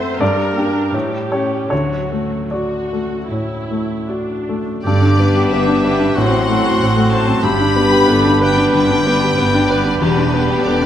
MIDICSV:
0, 0, Header, 1, 11, 480
1, 0, Start_track
1, 0, Key_signature, 2, "major"
1, 0, Tempo, 727273
1, 619, Tempo, 787402
1, 1090, Time_signature, 4, 2, 24, 8
1, 2059, Tempo, 766284
1, 3019, Key_signature, 1, "major"
1, 3019, Tempo, 651466
1, 5899, Tempo, 634249
1, 7501, End_track
2, 0, Start_track
2, 0, Title_t, "Flute"
2, 0, Program_c, 0, 73
2, 3029, Note_on_c, 0, 86, 42
2, 3999, Note_on_c, 0, 84, 46
2, 4010, Note_off_c, 0, 86, 0
2, 4928, Note_off_c, 0, 84, 0
2, 4933, Note_on_c, 0, 83, 45
2, 7501, Note_off_c, 0, 83, 0
2, 7501, End_track
3, 0, Start_track
3, 0, Title_t, "Violin section"
3, 0, Program_c, 1, 48
3, 3022, Note_on_c, 1, 74, 61
3, 3478, Note_off_c, 1, 74, 0
3, 3514, Note_on_c, 1, 76, 57
3, 3995, Note_on_c, 1, 78, 66
3, 3997, Note_off_c, 1, 76, 0
3, 4694, Note_on_c, 1, 81, 64
3, 4700, Note_off_c, 1, 78, 0
3, 4929, Note_on_c, 1, 83, 75
3, 4932, Note_off_c, 1, 81, 0
3, 5656, Note_off_c, 1, 83, 0
3, 5660, Note_on_c, 1, 79, 62
3, 5884, Note_off_c, 1, 79, 0
3, 5893, Note_on_c, 1, 79, 73
3, 6602, Note_off_c, 1, 79, 0
3, 6619, Note_on_c, 1, 74, 62
3, 6859, Note_off_c, 1, 74, 0
3, 6859, Note_on_c, 1, 71, 66
3, 7329, Note_off_c, 1, 71, 0
3, 7341, Note_on_c, 1, 74, 65
3, 7501, Note_off_c, 1, 74, 0
3, 7501, End_track
4, 0, Start_track
4, 0, Title_t, "French horn section"
4, 0, Program_c, 2, 60
4, 3029, Note_on_c, 2, 69, 51
4, 3251, Note_off_c, 2, 69, 0
4, 3279, Note_on_c, 2, 67, 40
4, 3996, Note_on_c, 2, 66, 48
4, 4002, Note_off_c, 2, 67, 0
4, 4232, Note_off_c, 2, 66, 0
4, 4232, Note_on_c, 2, 64, 44
4, 4460, Note_on_c, 2, 66, 49
4, 4465, Note_off_c, 2, 64, 0
4, 4933, Note_off_c, 2, 66, 0
4, 4943, Note_on_c, 2, 67, 49
4, 5410, Note_off_c, 2, 67, 0
4, 5416, Note_on_c, 2, 69, 52
4, 5660, Note_off_c, 2, 69, 0
4, 5662, Note_on_c, 2, 71, 61
4, 6861, Note_off_c, 2, 71, 0
4, 6868, Note_on_c, 2, 67, 53
4, 7343, Note_off_c, 2, 67, 0
4, 7344, Note_on_c, 2, 69, 55
4, 7501, Note_off_c, 2, 69, 0
4, 7501, End_track
5, 0, Start_track
5, 0, Title_t, "Oboe"
5, 0, Program_c, 3, 68
5, 3021, Note_on_c, 3, 67, 46
5, 3991, Note_on_c, 3, 66, 47
5, 4003, Note_off_c, 3, 67, 0
5, 4929, Note_off_c, 3, 66, 0
5, 4934, Note_on_c, 3, 67, 47
5, 7501, Note_off_c, 3, 67, 0
5, 7501, End_track
6, 0, Start_track
6, 0, Title_t, "Violin section"
6, 0, Program_c, 4, 48
6, 3255, Note_on_c, 4, 62, 40
6, 3257, Note_on_c, 4, 71, 40
6, 3737, Note_off_c, 4, 62, 0
6, 3738, Note_off_c, 4, 71, 0
6, 3755, Note_on_c, 4, 62, 37
6, 3760, Note_on_c, 4, 71, 38
6, 3991, Note_off_c, 4, 62, 0
6, 3994, Note_off_c, 4, 71, 0
6, 3994, Note_on_c, 4, 72, 38
6, 3999, Note_on_c, 4, 60, 40
6, 4226, Note_off_c, 4, 72, 0
6, 4228, Note_off_c, 4, 60, 0
6, 4241, Note_on_c, 4, 60, 39
6, 4242, Note_on_c, 4, 72, 40
6, 4695, Note_off_c, 4, 60, 0
6, 4696, Note_off_c, 4, 72, 0
6, 4705, Note_on_c, 4, 60, 40
6, 4706, Note_on_c, 4, 72, 37
6, 4933, Note_off_c, 4, 60, 0
6, 4934, Note_off_c, 4, 72, 0
6, 5166, Note_on_c, 4, 62, 44
6, 5170, Note_on_c, 4, 71, 40
6, 5646, Note_off_c, 4, 62, 0
6, 5648, Note_off_c, 4, 71, 0
6, 5657, Note_on_c, 4, 71, 42
6, 5661, Note_on_c, 4, 62, 39
6, 6120, Note_off_c, 4, 62, 0
6, 6126, Note_off_c, 4, 71, 0
6, 6129, Note_on_c, 4, 62, 39
6, 6135, Note_on_c, 4, 71, 42
6, 6601, Note_off_c, 4, 71, 0
6, 6605, Note_off_c, 4, 62, 0
6, 6610, Note_on_c, 4, 71, 41
6, 6616, Note_on_c, 4, 62, 40
6, 6845, Note_off_c, 4, 62, 0
6, 6850, Note_off_c, 4, 71, 0
6, 6854, Note_on_c, 4, 62, 39
6, 6858, Note_on_c, 4, 67, 42
6, 7060, Note_off_c, 4, 62, 0
6, 7061, Note_off_c, 4, 67, 0
6, 7069, Note_on_c, 4, 62, 46
6, 7071, Note_on_c, 4, 67, 45
6, 7501, Note_off_c, 4, 62, 0
6, 7501, Note_off_c, 4, 67, 0
6, 7501, End_track
7, 0, Start_track
7, 0, Title_t, "Grand piano"
7, 0, Program_c, 5, 0
7, 0, Control_c, 5, 64, 127
7, 0, Note_on_c, 5, 42, 57
7, 0, Note_on_c, 5, 60, 45
7, 0, Note_on_c, 5, 69, 51
7, 0, Note_on_c, 5, 76, 66
7, 0, Note_on_c, 5, 78, 72
7, 103, Note_off_c, 5, 42, 0
7, 106, Note_off_c, 5, 76, 0
7, 135, Note_on_c, 5, 43, 55
7, 136, Note_on_c, 5, 74, 62
7, 139, Note_off_c, 5, 60, 0
7, 148, Control_c, 5, 64, 0
7, 150, Note_off_c, 5, 69, 0
7, 155, Note_off_c, 5, 78, 0
7, 241, Control_c, 5, 64, 127
7, 379, Note_on_c, 5, 67, 42
7, 380, Note_on_c, 5, 62, 38
7, 597, Note_off_c, 5, 67, 0
7, 598, Note_off_c, 5, 62, 0
7, 604, Note_off_c, 5, 43, 0
7, 620, Note_on_c, 5, 45, 46
7, 630, Control_c, 5, 64, 0
7, 730, Control_c, 5, 64, 127
7, 826, Note_off_c, 5, 74, 0
7, 851, Note_on_c, 5, 61, 32
7, 851, Note_on_c, 5, 73, 46
7, 853, Note_on_c, 5, 67, 36
7, 1067, Note_off_c, 5, 61, 0
7, 1068, Note_off_c, 5, 67, 0
7, 1074, Note_off_c, 5, 73, 0
7, 1077, Note_off_c, 5, 45, 0
7, 1084, Note_on_c, 5, 73, 51
7, 1098, Note_on_c, 5, 38, 41
7, 1102, Control_c, 5, 64, 0
7, 1209, Control_c, 5, 64, 127
7, 1341, Note_on_c, 5, 57, 29
7, 1550, Note_off_c, 5, 73, 0
7, 1576, Note_on_c, 5, 74, 35
7, 1592, Note_on_c, 5, 66, 31
7, 1727, Note_off_c, 5, 57, 0
7, 1833, Note_on_c, 5, 57, 25
7, 1972, Note_off_c, 5, 66, 0
7, 2039, Note_off_c, 5, 38, 0
7, 2072, Note_on_c, 5, 45, 29
7, 2212, Note_off_c, 5, 57, 0
7, 2316, Note_on_c, 5, 57, 25
7, 2455, Note_off_c, 5, 45, 0
7, 2521, Note_off_c, 5, 74, 0
7, 2556, Note_on_c, 5, 66, 29
7, 2700, Note_off_c, 5, 57, 0
7, 2805, Note_on_c, 5, 57, 28
7, 2938, Note_off_c, 5, 66, 0
7, 3027, Note_off_c, 5, 57, 0
7, 3033, Control_c, 5, 64, 0
7, 3042, Note_on_c, 5, 43, 49
7, 3156, Note_on_c, 5, 62, 36
7, 3161, Control_c, 5, 64, 127
7, 3287, Note_on_c, 5, 59, 39
7, 3343, Note_off_c, 5, 62, 0
7, 3409, Note_on_c, 5, 67, 41
7, 3469, Note_off_c, 5, 59, 0
7, 3533, Note_on_c, 5, 59, 42
7, 3592, Note_off_c, 5, 67, 0
7, 3635, Note_on_c, 5, 62, 41
7, 3716, Note_off_c, 5, 59, 0
7, 3765, Note_on_c, 5, 71, 38
7, 3828, Note_off_c, 5, 62, 0
7, 3874, Note_on_c, 5, 62, 40
7, 3953, Note_off_c, 5, 71, 0
7, 3976, Note_off_c, 5, 43, 0
7, 3994, Note_off_c, 5, 62, 0
7, 4006, Control_c, 5, 64, 0
7, 4006, Note_on_c, 5, 45, 48
7, 4107, Note_on_c, 5, 60, 39
7, 4134, Control_c, 5, 64, 127
7, 4237, Note_on_c, 5, 57, 38
7, 4298, Note_off_c, 5, 60, 0
7, 4364, Note_on_c, 5, 66, 41
7, 4421, Note_off_c, 5, 57, 0
7, 4483, Note_on_c, 5, 60, 42
7, 4543, Note_off_c, 5, 66, 0
7, 4589, Note_on_c, 5, 57, 40
7, 4661, Note_off_c, 5, 60, 0
7, 4709, Note_on_c, 5, 72, 44
7, 4774, Note_off_c, 5, 57, 0
7, 4816, Note_on_c, 5, 60, 37
7, 4893, Note_off_c, 5, 72, 0
7, 4913, Note_off_c, 5, 45, 0
7, 4931, Note_on_c, 5, 43, 51
7, 4934, Note_off_c, 5, 60, 0
7, 4948, Control_c, 5, 64, 0
7, 5057, Note_on_c, 5, 62, 39
7, 5074, Control_c, 5, 64, 127
7, 5175, Note_on_c, 5, 59, 41
7, 5246, Note_off_c, 5, 62, 0
7, 5289, Note_on_c, 5, 67, 45
7, 5367, Note_off_c, 5, 59, 0
7, 5407, Note_on_c, 5, 59, 44
7, 5487, Note_off_c, 5, 67, 0
7, 5532, Note_on_c, 5, 62, 44
7, 5607, Note_off_c, 5, 59, 0
7, 5658, Note_on_c, 5, 71, 44
7, 5729, Note_off_c, 5, 62, 0
7, 5773, Note_on_c, 5, 62, 44
7, 5851, Note_off_c, 5, 71, 0
7, 5868, Note_off_c, 5, 43, 0
7, 5892, Note_on_c, 5, 50, 42
7, 5969, Note_off_c, 5, 62, 0
7, 6021, Note_on_c, 5, 62, 41
7, 6089, Note_off_c, 5, 50, 0
7, 6142, Note_on_c, 5, 59, 41
7, 6213, Note_off_c, 5, 62, 0
7, 6271, Note_on_c, 5, 67, 43
7, 6333, Note_off_c, 5, 59, 0
7, 6383, Note_on_c, 5, 59, 43
7, 6457, Note_off_c, 5, 67, 0
7, 6504, Note_on_c, 5, 62, 45
7, 6574, Note_off_c, 5, 59, 0
7, 6628, Note_on_c, 5, 71, 51
7, 6695, Note_off_c, 5, 62, 0
7, 6743, Note_on_c, 5, 62, 43
7, 6816, Note_off_c, 5, 71, 0
7, 6861, Note_off_c, 5, 62, 0
7, 6862, Note_on_c, 5, 40, 58
7, 6872, Control_c, 5, 64, 0
7, 6974, Control_c, 5, 64, 127
7, 6982, Note_on_c, 5, 62, 43
7, 7106, Note_on_c, 5, 59, 44
7, 7172, Note_off_c, 5, 62, 0
7, 7234, Note_on_c, 5, 67, 48
7, 7294, Note_off_c, 5, 59, 0
7, 7360, Note_on_c, 5, 59, 49
7, 7419, Note_off_c, 5, 67, 0
7, 7471, Note_on_c, 5, 62, 47
7, 7501, Note_off_c, 5, 40, 0
7, 7501, Note_off_c, 5, 59, 0
7, 7501, Note_off_c, 5, 62, 0
7, 7501, End_track
8, 0, Start_track
8, 0, Title_t, "Clarinet"
8, 0, Program_c, 6, 71
8, 3036, Note_on_c, 6, 59, 44
8, 4002, Note_on_c, 6, 60, 43
8, 4013, Note_off_c, 6, 59, 0
8, 4921, Note_off_c, 6, 60, 0
8, 4925, Note_on_c, 6, 62, 49
8, 7501, Note_off_c, 6, 62, 0
8, 7501, End_track
9, 0, Start_track
9, 0, Title_t, "Viola section"
9, 0, Program_c, 7, 48
9, 0, Note_on_c, 7, 57, 44
9, 0, Note_on_c, 7, 72, 53
9, 105, Note_off_c, 7, 72, 0
9, 117, Note_on_c, 7, 70, 51
9, 122, Note_on_c, 7, 50, 48
9, 125, Note_off_c, 7, 57, 0
9, 231, Note_on_c, 7, 55, 42
9, 239, Note_off_c, 7, 50, 0
9, 355, Note_on_c, 7, 58, 44
9, 363, Note_off_c, 7, 55, 0
9, 483, Note_on_c, 7, 62, 39
9, 486, Note_off_c, 7, 58, 0
9, 605, Note_on_c, 7, 67, 40
9, 609, Note_on_c, 7, 52, 36
9, 610, Note_off_c, 7, 70, 0
9, 613, Note_off_c, 7, 62, 0
9, 721, Note_off_c, 7, 52, 0
9, 724, Note_on_c, 7, 55, 37
9, 846, Note_off_c, 7, 55, 0
9, 846, Note_on_c, 7, 57, 36
9, 965, Note_on_c, 7, 61, 32
9, 967, Note_off_c, 7, 57, 0
9, 1078, Note_on_c, 7, 50, 36
9, 1082, Note_on_c, 7, 66, 34
9, 1084, Note_off_c, 7, 67, 0
9, 1088, Note_off_c, 7, 61, 0
9, 1197, Note_off_c, 7, 50, 0
9, 1212, Note_on_c, 7, 54, 31
9, 1320, Note_on_c, 7, 57, 29
9, 1334, Note_off_c, 7, 54, 0
9, 1440, Note_on_c, 7, 54, 29
9, 1449, Note_off_c, 7, 57, 0
9, 1525, Note_off_c, 7, 66, 0
9, 1565, Note_on_c, 7, 66, 43
9, 1570, Note_off_c, 7, 54, 0
9, 2029, Note_off_c, 7, 66, 0
9, 2052, Note_on_c, 7, 64, 37
9, 2543, Note_off_c, 7, 64, 0
9, 2544, Note_on_c, 7, 62, 30
9, 3018, Note_off_c, 7, 62, 0
9, 3255, Note_on_c, 7, 55, 42
9, 3258, Note_on_c, 7, 59, 38
9, 3737, Note_off_c, 7, 55, 0
9, 3739, Note_off_c, 7, 59, 0
9, 3756, Note_on_c, 7, 55, 40
9, 3760, Note_on_c, 7, 59, 38
9, 3992, Note_off_c, 7, 55, 0
9, 3993, Note_off_c, 7, 59, 0
9, 4011, Note_on_c, 7, 54, 38
9, 4012, Note_on_c, 7, 57, 41
9, 4231, Note_off_c, 7, 54, 0
9, 4232, Note_off_c, 7, 57, 0
9, 4240, Note_on_c, 7, 54, 42
9, 4241, Note_on_c, 7, 57, 39
9, 4690, Note_off_c, 7, 54, 0
9, 4692, Note_off_c, 7, 57, 0
9, 4699, Note_on_c, 7, 54, 39
9, 4701, Note_on_c, 7, 57, 41
9, 4930, Note_off_c, 7, 54, 0
9, 4931, Note_off_c, 7, 57, 0
9, 5164, Note_on_c, 7, 55, 43
9, 5165, Note_on_c, 7, 59, 42
9, 5640, Note_off_c, 7, 55, 0
9, 5646, Note_off_c, 7, 59, 0
9, 5649, Note_on_c, 7, 55, 42
9, 5653, Note_on_c, 7, 59, 45
9, 6122, Note_off_c, 7, 55, 0
9, 6123, Note_off_c, 7, 59, 0
9, 6131, Note_on_c, 7, 55, 44
9, 6133, Note_on_c, 7, 59, 44
9, 6597, Note_off_c, 7, 59, 0
9, 6601, Note_off_c, 7, 55, 0
9, 6606, Note_on_c, 7, 59, 40
9, 6610, Note_on_c, 7, 55, 43
9, 6839, Note_off_c, 7, 55, 0
9, 6840, Note_off_c, 7, 59, 0
9, 6848, Note_on_c, 7, 55, 46
9, 6849, Note_on_c, 7, 59, 45
9, 7080, Note_off_c, 7, 55, 0
9, 7081, Note_off_c, 7, 59, 0
9, 7089, Note_on_c, 7, 55, 44
9, 7090, Note_on_c, 7, 59, 43
9, 7501, Note_off_c, 7, 55, 0
9, 7501, Note_off_c, 7, 59, 0
9, 7501, End_track
10, 0, Start_track
10, 0, Title_t, "Cello section"
10, 0, Program_c, 8, 48
10, 134, Note_on_c, 8, 43, 60
10, 518, Note_off_c, 8, 43, 0
10, 616, Note_on_c, 8, 45, 48
10, 992, Note_off_c, 8, 45, 0
10, 1086, Note_on_c, 8, 50, 39
10, 1478, Note_off_c, 8, 50, 0
10, 2059, Note_on_c, 8, 45, 37
10, 2448, Note_off_c, 8, 45, 0
10, 3021, Note_on_c, 8, 43, 49
10, 3450, Note_off_c, 8, 43, 0
10, 3515, Note_on_c, 8, 43, 47
10, 3941, Note_off_c, 8, 43, 0
10, 3999, Note_on_c, 8, 45, 50
10, 4412, Note_off_c, 8, 45, 0
10, 4470, Note_on_c, 8, 45, 48
10, 4882, Note_off_c, 8, 45, 0
10, 4939, Note_on_c, 8, 43, 50
10, 5359, Note_off_c, 8, 43, 0
10, 5416, Note_on_c, 8, 43, 48
10, 5844, Note_off_c, 8, 43, 0
10, 5901, Note_on_c, 8, 43, 55
10, 6324, Note_off_c, 8, 43, 0
10, 6379, Note_on_c, 8, 43, 51
10, 6803, Note_off_c, 8, 43, 0
10, 6861, Note_on_c, 8, 40, 52
10, 7282, Note_off_c, 8, 40, 0
10, 7336, Note_on_c, 8, 40, 52
10, 7501, Note_off_c, 8, 40, 0
10, 7501, End_track
11, 0, Start_track
11, 0, Title_t, "Double bass section"
11, 0, Program_c, 10, 48
11, 3016, Note_on_c, 10, 31, 51
11, 3447, Note_off_c, 10, 31, 0
11, 3501, Note_on_c, 10, 31, 48
11, 3934, Note_off_c, 10, 31, 0
11, 3991, Note_on_c, 10, 33, 51
11, 4408, Note_off_c, 10, 33, 0
11, 4455, Note_on_c, 10, 33, 49
11, 4875, Note_off_c, 10, 33, 0
11, 4933, Note_on_c, 10, 31, 51
11, 5356, Note_off_c, 10, 31, 0
11, 5410, Note_on_c, 10, 31, 51
11, 5840, Note_off_c, 10, 31, 0
11, 5891, Note_on_c, 10, 31, 55
11, 6319, Note_off_c, 10, 31, 0
11, 6383, Note_on_c, 10, 31, 54
11, 6805, Note_off_c, 10, 31, 0
11, 6860, Note_on_c, 10, 28, 57
11, 7282, Note_off_c, 10, 28, 0
11, 7340, Note_on_c, 10, 28, 55
11, 7501, Note_off_c, 10, 28, 0
11, 7501, End_track
0, 0, End_of_file